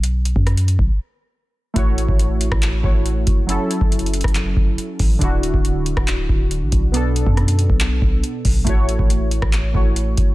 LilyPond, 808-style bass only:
\new Staff \with { instrumentName = "808-style bass" } { \clef bass \time 4/4 \key fis \minor \tempo 4 = 139 b,,8. fis,4 b,,16 r2 | a,,8. a,,4 a,,8. a,,4 fis,,8~ | fis,,16 r8 fis,,4 fis,,8. fis,,8 r8 a,,8 | d,,8. d,,4 d,,8. d,,8. a,,16 b,,8~ |
b,,8. fis,4 b,,8. b,,8 r8 b,,8 | a,,8. a,,4 a,,8. a,,4 fis,,8 | }